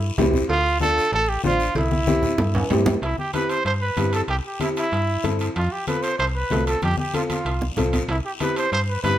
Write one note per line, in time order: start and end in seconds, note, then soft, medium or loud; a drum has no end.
0.00 0.12 G2 loud
0.00 0.13 E4 medium
0.18 0.43 C2 medium
0.18 0.40 C4 medium
0.18 0.41 E4 medium
0.18 0.41 G4 medium
0.18 high conga medium
0.18 low conga medium
0.18 low timbale medium
0.18 short guiro medium
0.33 low conga medium
0.33 short guiro medium
0.49 1.00 D2 medium
0.49 0.79 F4 loud
0.49 cowbell loud
0.49 high conga soft
0.49 long guiro medium
0.80 1.03 D4 medium
0.80 1.03 F4 medium
0.80 1.10 A4 loud
0.80 1.04 A4 medium
0.80 high conga medium
0.80 short guiro medium
0.98 short guiro medium
1.12 1.38 A1 loud
1.12 1.30 A4 loud
1.12 cowbell medium
1.12 high conga soft
1.12 long guiro medium
1.29 1.44 G4 medium
1.44 1.70 A1 medium
1.44 1.67 D4 medium
1.44 1.74 F4 loud
1.44 1.67 F4 medium
1.44 1.67 C5 medium
1.44 high conga medium
1.44 short guiro medium
1.60 short guiro medium
1.75 2.26 C2 medium
1.75 2.67 E4 medium
1.75 cowbell loud
1.75 high conga medium
1.75 long guiro medium
1.91 high conga medium
2.07 2.29 C4 medium
2.07 2.30 E4 medium
2.07 2.30 G4 medium
2.07 high conga loud
2.07 short guiro medium
2.23 low conga medium
2.23 short guiro medium
2.38 2.64 G2 loud
2.38 cowbell medium
2.38 low conga medium
2.38 long guiro medium
2.55 low conga medium
2.55 high timbale medium
2.70 2.96 G2 medium
2.70 2.93 C4 medium
2.70 2.93 E4 medium
2.70 2.93 G4 loud
2.70 low conga medium
2.70 low timbale medium
2.70 short guiro medium
2.86 low conga loud
2.86 low timbale medium
2.86 short guiro medium
3.02 3.15 C2 loud
3.02 3.17 E4 medium
3.02 high timbale medium
3.02 long guiro medium
3.18 3.33 G4 medium
3.18 high conga medium
3.34 3.56 C4 medium
3.34 3.57 E4 medium
3.34 3.57 G4 medium
3.34 3.51 B4 medium
3.34 high conga medium
3.34 high timbale medium
3.34 short guiro medium
3.49 3.65 C5 loud
3.49 high timbale medium
3.49 short guiro medium
3.65 3.91 G2 medium
3.65 3.73 C5 loud
3.65 high timbale medium
3.65 long guiro medium
3.81 4.11 B4 medium
3.97 4.23 G2 medium
3.97 4.20 C4 medium
3.97 4.20 E4 medium
3.97 4.20 G4 medium
3.97 high conga medium
3.97 high timbale medium
3.97 short guiro medium
4.13 4.21 A4 medium
4.13 high timbale medium
4.13 short guiro medium
4.28 4.41 C2 loud
4.28 4.36 G4 medium
4.28 high timbale medium
4.28 long guiro medium
4.45 4.60 G4 medium
4.60 4.82 C4 medium
4.60 4.83 E4 medium
4.60 4.69 E4 medium
4.60 4.83 G4 medium
4.60 high conga medium
4.60 high timbale medium
4.60 short guiro medium
4.76 5.36 E4 medium
4.76 high timbale medium
4.76 short guiro medium
4.92 5.18 G2 medium
4.92 high timbale medium
4.92 long guiro medium
5.23 5.50 G2 medium
5.23 5.46 C4 medium
5.23 5.46 E4 medium
5.23 5.46 A4 medium
5.23 high conga medium
5.23 high timbale medium
5.23 short guiro medium
5.39 high timbale medium
5.39 short guiro medium
5.56 5.69 F2 loud
5.56 5.73 F4 medium
5.56 high timbale medium
5.56 long guiro medium
5.72 5.87 G4 medium
5.87 6.10 C4 medium
5.87 6.10 F4 medium
5.87 6.10 A4 medium
5.87 6.04 B4 medium
5.87 high conga medium
5.87 high timbale medium
5.87 short guiro medium
6.02 6.18 C5 medium
6.02 high timbale medium
6.02 short guiro medium
6.18 6.45 C2 loud
6.18 6.26 C5 loud
6.18 high timbale medium
6.18 long guiro medium
6.35 6.64 B4 medium
6.50 6.76 C2 loud
6.50 6.73 C4 medium
6.50 6.73 F4 medium
6.50 6.73 A4 medium
6.50 high conga medium
6.50 high timbale medium
6.50 low timbale medium
6.50 short guiro medium
6.67 6.82 A4 medium
6.67 high timbale medium
6.67 short guiro medium
6.82 6.95 F2 loud
6.82 6.98 G4 loud
6.82 high conga medium
6.82 high timbale medium
6.82 long guiro medium
6.97 7.13 G4 medium
6.97 high conga medium
7.14 7.36 C4 medium
7.14 7.36 F4 medium
7.14 7.23 F4 medium
7.14 7.36 A4 medium
7.14 high conga medium
7.14 high timbale medium
7.14 short guiro medium
7.30 7.65 F4 medium
7.30 high conga medium
7.30 high timbale medium
7.30 short guiro medium
7.45 7.71 C2 medium
7.45 high timbale medium
7.45 long guiro medium
7.62 low conga medium
7.77 8.03 C2 loud
7.77 7.99 C4 medium
7.77 7.99 F4 medium
7.77 8.00 A4 medium
7.77 low conga medium
7.77 high timbale medium
7.77 short guiro medium
7.93 low conga medium
7.93 high timbale medium
7.93 short guiro medium
8.08 8.21 C2 loud
8.08 8.17 E4 medium
8.08 high timbale medium
8.08 long guiro medium
8.25 8.32 G4 medium
8.40 8.63 C4 medium
8.40 8.63 E4 medium
8.40 8.63 G4 medium
8.40 8.56 B4 medium
8.40 high conga medium
8.40 high timbale medium
8.40 short guiro medium
8.56 8.72 C5 loud
8.56 high timbale medium
8.56 short guiro medium
8.72 8.98 G2 medium
8.72 8.80 C5 loud
8.72 high timbale medium
8.72 long guiro medium
8.89 9.02 B4 medium
9.03 9.18 G2 medium
9.03 9.18 C4 medium
9.03 9.18 E4 medium
9.03 9.18 G4 medium
9.03 9.18 B4 loud
9.03 high conga medium
9.03 high timbale medium
9.03 short guiro medium